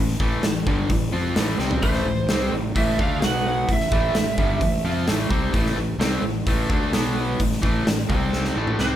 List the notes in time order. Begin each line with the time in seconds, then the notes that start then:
Already playing: A1 A2 E3
0.08 snare
0.20 A1 A2 E3 A3, kick
0.43 A1 A2 E3, snare, open hi-hat
0.66 G1 G2 D3 G3, kick
0.90 A1 A2 E3, kick, open hi-hat
1.12 F2 F3 C4 F4
1.36 A1 A2 E3 A3, snare, open hi-hat
1.59 C2 C3 G3 C4, snare
1.71 floor tom
1.82 A1 A2 E3 A3 C5, kick, open hi-hat
1.94 snare
2.06 A1 A2 E3
2.29 C2 C3 G3 C4, snare, open hi-hat
2.53 A1 A2 E3
2.75 A1 A2 E3 A3 E5, kick, open hi-hat
2.99 D2 D3 A3 D4 F5, kick
3.22 B1 B2 F#3 B3 F#5, snare, open hi-hat
3.48 F#5
3.69 A1 A2 E3, kick, open hi-hat
3.73 E5
3.80 snare
3.92 A1 A2 E3 A3, kick
4.15 A1 A2 E3, snare, open hi-hat
4.37 G1 G2 D3 G3, kick
4.61 A1 A2 E3, kick, open hi-hat
4.84 F2 F3 C4 F4
5.08 A1 A2 E3 A3, snare, open hi-hat
5.30 C2 C3 G3 C4, kick
5.54 A1 A2 E3 A3, kick, open hi-hat
5.66 snare
5.75 A1 A2 E3
5.98 C2 C3 G3 C4, snare, open hi-hat
6.22 A1 A2 E3
6.47 A1 A2 E3 A3, kick, open hi-hat
6.69 D2 D3 A3 D4, kick
6.92 B1 B2 F#3 B3, snare, open hi-hat
7.40 A1 A2 E3, kick, open hi-hat
7.52 snare
7.62 A1 A2 E3 A3, kick
7.86 A1 A2 E3, snare, open hi-hat
8.09 C2 C3 G3 C4, kick
8.33 snare
8.45 snare
8.56 A1 A2 E3 A3
8.67 mid tom
8.79 C2 C3 G3 C4 C5, snare